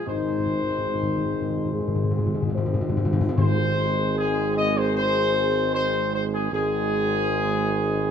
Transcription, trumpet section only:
0.06 2.51 C5 medium
3.38 4.13 C5 loud
4.17 4.54 G#4 medium
4.56 4.75 D#5 medium
4.76 4.94 C5 medium
4.96 5.70 C5 loud
5.75 6.11 C5 medium
6.15 6.23 C5 medium
6.34 6.51 G#4 medium
6.53 8.11 G#4 loud

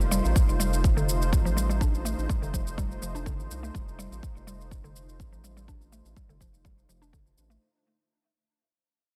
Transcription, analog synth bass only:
0.00 0.21 F1 loud
0.25 0.34 A1 medium
0.49 1.34 F1 medium
1.33 2.14 A1 loud
2.18 2.27 A1 medium
2.42 2.99 F1 medium
3.02 3.38 F1 medium
3.39 3.48 A1 medium
3.50 3.70 C2 medium
3.75 4.08 F1 loud
4.11 4.21 A1 medium
4.36 5.21 F1 medium
5.20 6.01 A1 loud
6.05 6.14 A1 medium
6.29 6.86 F1 medium
6.89 7.34 F1 medium
7.37 7.57 A1 medium

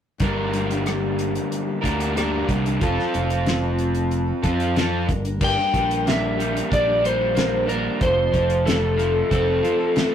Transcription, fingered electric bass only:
0.20 1.37 G1 medium
1.83 2.42 D2 medium
2.49 2.78 C2 medium
2.81 2.96 F1 medium
3.15 4.31 F1 medium
4.43 5.10 F2 medium
5.09 5.38 G1 medium
5.41 5.56 G1 medium
5.74 6.61 A#1 medium
6.71 7.88 A#1 medium
8.01 8.30 F1 medium
8.34 9.21 F1 medium
9.31 9.60 F1 medium

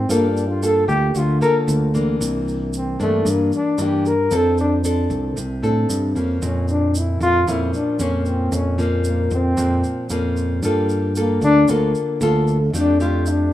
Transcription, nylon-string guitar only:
0.10 1.13 G3 medium
0.10 0.44 A#3 medium
0.10 0.44 F4 medium
0.10 0.44 A4 medium
0.63 1.37 A#3 medium
0.63 1.37 F4 medium
0.63 1.37 A4 medium
1.15 2.18 D3 medium
1.41 1.90 A#3 medium
1.41 1.90 F4 medium
1.41 1.90 A4 medium
1.94 2.95 E3 medium
1.94 2.96 A#3 medium
1.94 2.95 D4 medium
2.20 3.23 C3 medium
3.00 3.74 E3 medium
3.00 3.74 A#3 medium
3.00 3.75 D4 medium
3.26 4.28 G2 medium
3.79 4.12 E3 medium
3.79 4.12 A#3 medium
3.79 4.13 D4 medium
4.31 5.34 F3 medium
4.31 4.80 C4 medium
4.31 4.80 D4 medium
4.31 4.80 A4 medium
4.85 5.37 C4 soft
4.85 5.37 D4 medium
4.85 5.37 A4 medium
5.36 6.39 C3 medium
5.63 6.11 C4 medium
5.63 6.11 D4 medium
5.63 6.11 A4 medium
6.16 7.17 F3 medium
6.16 7.17 A#3 medium
6.16 7.17 C#4 medium
6.42 7.45 A#2 medium
7.47 8.50 A#2 medium
7.47 7.96 F3 medium
7.47 7.96 A#3 medium
7.47 7.96 C#4 medium
8.00 8.74 F3 medium
8.00 8.75 A#3 medium
8.00 8.75 C#4 medium
8.52 9.55 A#2 medium
8.78 9.53 F3 medium
8.78 9.54 A#3 medium
8.78 9.54 C#4 medium
9.57 10.60 A#2 medium
9.57 10.06 F3 medium
9.57 10.06 A#3 medium
10.11 10.59 F3 medium
10.11 10.59 A#3 medium
10.11 10.59 C#4 medium
10.64 11.66 G3 medium
10.64 11.12 A#3 medium
10.64 11.12 F4 medium
10.64 11.12 A4 medium
11.17 11.65 A#3 medium
11.17 11.65 F4 medium
11.17 11.65 A4 medium
11.70 12.72 D3 medium
11.70 12.18 A#3 medium
11.70 12.18 F4 medium
11.70 12.18 A4 medium
12.22 12.57 A#3 medium
12.22 12.57 F4 medium
12.22 12.57 A4 medium
12.74 13.53 F3 medium
12.74 12.96 A3 medium
12.74 12.96 D4 medium
12.74 12.97 G4 medium
13.00 13.53 A3 medium
13.00 13.53 D4 medium
13.00 13.53 G4 medium

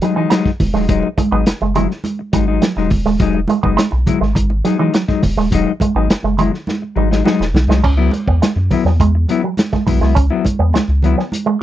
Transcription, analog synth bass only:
0.60 0.73 E1 loud
0.74 0.87 D#1 medium
0.89 1.02 E1 loud
1.32 1.45 G#1 medium
1.47 1.53 F#1 soft
1.62 1.87 F#1 medium
2.33 2.59 G#1 medium
2.77 2.90 E1 medium
2.91 3.04 E1 loud
3.06 3.19 D#1 loud
3.20 3.46 E1 medium
3.63 3.76 F#1 medium
3.93 4.05 B1 medium
4.21 4.34 G#1 medium
4.36 4.62 G#1 loud
5.23 5.36 E1 loud
5.37 5.50 D#1 loud
5.52 5.65 E1 loud
5.95 6.08 G#1 medium
6.09 6.15 F#1 medium
6.24 6.50 F#1 medium
6.96 7.22 G#1 medium
7.40 7.53 E1 medium
7.54 7.67 B1 loud
7.68 7.82 C2 loud
7.84 8.10 C#2 loud
8.28 8.40 E2 medium
8.56 8.69 F#2 medium
8.85 8.98 E2 medium
9.00 9.26 E2 loud
9.88 10.00 B1 loud
10.01 10.14 C2 medium
10.16 10.29 C#2 loud
10.59 10.72 E2 medium
10.74 10.80 C#2 soft
10.88 11.14 C#2 medium

